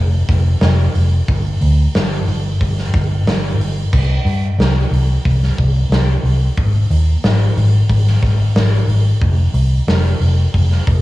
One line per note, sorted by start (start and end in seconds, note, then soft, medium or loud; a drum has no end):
0.00 0.20 F1 medium
0.28 0.53 F1 medium
0.28 kick loud
0.28 snare soft
0.28 open hi-hat medium
0.61 0.86 F1 loud
0.61 snare loud
0.61 open hi-hat medium
0.95 1.19 F1 medium
0.95 open hi-hat medium
1.28 1.53 G1 medium
1.28 kick loud
1.28 open hi-hat medium
1.61 1.85 D2 loud
1.61 open hi-hat medium
1.95 2.19 G1 medium
1.95 snare loud
1.95 open hi-hat medium
2.28 2.52 G1 medium
2.28 open hi-hat medium
2.61 2.85 G1 medium
2.61 kick medium
2.61 open hi-hat medium
2.78 snare soft
2.93 3.18 G1 loud
2.93 kick loud
2.93 snare soft
2.93 open hi-hat medium
3.26 3.51 G1 medium
3.26 snare loud
3.26 open hi-hat medium
3.58 3.83 G1 medium
3.58 open hi-hat medium
3.93 4.17 C2 medium
3.93 kick loud
3.93 crash loud
4.25 4.50 G2 loud
4.25 open hi-hat medium
4.58 4.83 C2 medium
4.58 snare loud
4.58 open hi-hat medium
4.91 5.16 C2 loud
4.91 open hi-hat medium
5.25 5.50 C2 loud
5.25 kick medium
5.25 open hi-hat medium
5.43 snare soft
5.58 5.82 C2 medium
5.58 kick loud
5.58 open hi-hat medium
5.89 6.14 C2 medium
5.89 snare loud
5.89 open hi-hat medium
6.23 6.48 C2 medium
6.23 open hi-hat medium
6.57 6.82 G#1 medium
6.57 kick loud
6.57 open hi-hat medium
6.90 7.15 D#2 medium
6.90 open hi-hat medium
7.24 7.48 G#1 medium
7.24 snare loud
7.24 open hi-hat medium
7.57 7.81 G#1 loud
7.57 open hi-hat medium
7.89 8.14 G#1 loud
7.89 kick medium
7.89 open hi-hat loud
8.07 snare soft
8.23 8.47 G#1 medium
8.23 kick medium
8.23 snare soft
8.23 open hi-hat medium
8.55 8.80 G#1 medium
8.55 snare loud
8.55 open hi-hat loud
8.88 9.12 G#1 medium
8.88 open hi-hat medium
9.22 9.46 F1 medium
9.22 kick loud
9.22 open hi-hat medium
9.54 9.79 C2 medium
9.54 open hi-hat medium
9.87 10.12 F1 loud
9.87 snare loud
9.87 open hi-hat loud
10.20 10.45 F1 medium
10.20 open hi-hat medium
10.54 10.79 F1 medium
10.54 kick medium
10.54 open hi-hat medium
10.71 snare soft
10.87 11.02 F1 loud
10.87 kick loud
10.87 open hi-hat medium